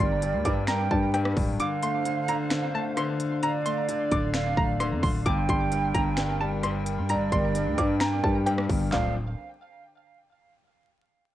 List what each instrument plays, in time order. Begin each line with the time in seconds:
Already playing: grand piano G2, analog synth pad G3 D4 A#4 G5, flute D5
0.00 808-style bass G1, grand piano G3, synth pluck C6
0.22 grand piano G2, closed hi-hat
0.34 808-style bass D2
0.45 808-style bass G2, grand piano G2, synth pluck D6, kick, closed hi-hat
0.67 grand piano G2, flute G5, synth pluck A#5, finger snap, snare, closed hi-hat
0.91 808-style bass G2, grand piano G3, synth pluck A5, kick
1.14 grand piano G2, synth pluck G5, cross-stick, closed hi-hat
1.25 cross-stick
1.37 808-style bass D1, kick, open hi-hat
1.60 grand piano D3, analog synth pad D3 C5 F5, flute F5, synth pluck D6, closed hi-hat
1.83 grand piano A3, synth pluck C6, closed hi-hat
2.05 grand piano D3, closed hi-hat
2.28 grand piano D3, synth pluck A#5, closed hi-hat
2.50 grand piano D3, finger snap, snare, closed hi-hat
2.74 grand piano A3, synth pluck A5
2.97 grand piano D3, synth pluck C6, cross-stick, closed hi-hat
3.20 closed hi-hat
3.43 grand piano D3, flute D5, analog synth pad D5, synth pluck A#5, closed hi-hat
3.66 grand piano A3, synth pluck C6, closed hi-hat
3.89 grand piano D3, closed hi-hat
4.11 808-style bass D1, grand piano D3, synth pluck D6, kick, closed hi-hat
4.34 grand piano D3, flute F5, finger snap, snare, closed hi-hat
4.57 808-style bass D1, grand piano A3, synth pluck A#5, kick
4.80 grand piano D3, synth pluck C6, cross-stick, closed hi-hat
4.92 808-style bass F2
5.03 808-style bass D1, synth pluck C6, kick, open hi-hat
5.26 808-style bass G1, grand piano G2, analog synth pad G3 D4 A#4 G5, flute G5, synth pluck D6, kick, closed hi-hat
5.49 808-style bass G1, grand piano G3, synth pluck C6, kick, closed hi-hat
5.72 grand piano G2, closed hi-hat
5.94 808-style bass G1, grand piano G2, synth pluck A#5, kick, closed hi-hat
6.17 grand piano G2, finger snap, snare, closed hi-hat
6.41 grand piano G3, synth pluck A5
6.63 grand piano G2, synth pluck C6, cross-stick, closed hi-hat
6.86 closed hi-hat
6.98 808-style bass G2
7.09 grand piano G2, flute D5, synth pluck A#5, closed hi-hat
7.15 808-style bass G1
7.32 808-style bass G1, grand piano G3, synth pluck C6, kick, closed hi-hat
7.55 grand piano G2, closed hi-hat
7.66 808-style bass D2
7.78 grand piano G2, 808-style bass G2, synth pluck D6, kick, closed hi-hat
8.00 grand piano G2, flute G5, synth pluck A#5, finger snap, snare, closed hi-hat
8.24 808-style bass G2, grand piano G3, synth pluck A5, kick
8.46 grand piano G2, synth pluck G5, cross-stick, closed hi-hat
8.58 cross-stick
8.70 808-style bass G1, kick, open hi-hat
8.92 808-style bass D1, grand piano F3 A3 C4 D4, synth pluck F5, flute F5, snare, clap, floor tom